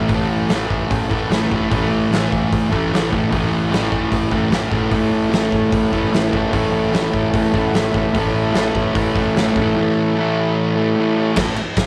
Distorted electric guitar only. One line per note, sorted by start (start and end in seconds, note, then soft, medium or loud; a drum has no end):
0.00 0.13 E3 medium
0.00 0.15 A3 medium
0.10 0.50 A2 medium
0.10 0.53 E3 loud
0.15 0.55 A3 loud
0.50 1.29 A2 medium
0.50 1.14 E3 medium
0.55 1.09 A3 medium
1.09 1.34 A3 medium
1.14 1.32 E3 medium
1.30 1.71 A2 medium
1.30 1.55 E3 medium
1.34 1.51 A3 medium
1.51 1.75 A3 medium
1.56 1.74 E3 medium
1.71 2.11 A2 medium
1.71 2.14 E3 medium
1.76 2.16 A3 loud
2.11 2.91 A2 medium
2.11 2.76 E3 medium
2.16 2.71 A3 medium
2.71 2.96 A3 medium
2.77 2.93 E3 medium
2.91 3.31 A2 medium
2.91 3.16 E3 medium
2.96 3.10 A3 medium
3.11 3.35 A3 medium
3.16 3.34 E3 medium
3.31 3.71 A2 medium
3.31 3.74 E3 medium
3.36 3.76 A3 loud
3.71 4.50 A2 medium
3.71 4.36 E3 medium
3.76 4.31 A3 medium
4.31 4.55 A3 medium
4.37 4.53 E3 medium
4.51 4.92 A2 medium
4.51 4.77 E3 medium
4.56 4.72 A3 loud
4.73 4.95 A3 medium
4.77 4.94 E3 medium
4.92 5.29 A2 medium
4.92 5.32 E3 loud
4.92 5.34 A3 loud
5.30 6.11 A2 medium
5.30 5.97 E3 medium
5.34 5.92 A3 medium
5.92 6.15 A3 medium
5.97 6.14 E3 medium
6.12 6.51 A2 medium
6.12 6.37 E3 medium
6.16 6.32 A3 loud
6.32 6.56 A3 medium
6.37 6.54 E3 medium
6.52 6.92 A2 medium
6.52 6.95 E3 medium
6.57 6.97 A3 medium
6.93 7.73 A2 medium
6.93 7.58 E3 medium
6.97 7.54 A3 medium
7.54 7.79 A3 medium
7.58 7.76 E3 medium
7.74 8.13 A2 medium
7.74 7.97 E3 medium
7.79 7.92 A3 medium
7.93 8.18 A3 medium
7.98 8.16 E3 medium
8.13 8.54 A2 medium
8.13 8.56 E3 loud
8.18 8.58 A3 loud
8.54 9.35 A2 medium
8.54 9.21 E3 medium
8.59 9.15 A3 medium
9.16 9.40 A3 medium
9.21 9.37 E3 medium
9.35 9.76 A2 medium
9.35 9.61 E3 medium
9.40 9.56 A3 loud
9.57 9.81 A3 medium
9.62 9.78 E3 medium
9.77 10.14 A2 loud
9.77 10.17 E3 loud
9.82 10.19 A3 loud
10.15 10.94 A2 medium
10.15 10.80 E3 medium
10.20 10.75 A3 medium
10.76 10.99 A3 medium
10.81 10.98 E3 medium
10.95 11.35 A2 loud
10.95 11.20 E3 medium
11.00 11.15 A3 medium
11.16 11.35 A3 medium
11.21 11.38 E3 medium
11.36 11.56 A2 medium
11.36 11.57 A3 loud
11.59 muted distorted electric guitar stroke medium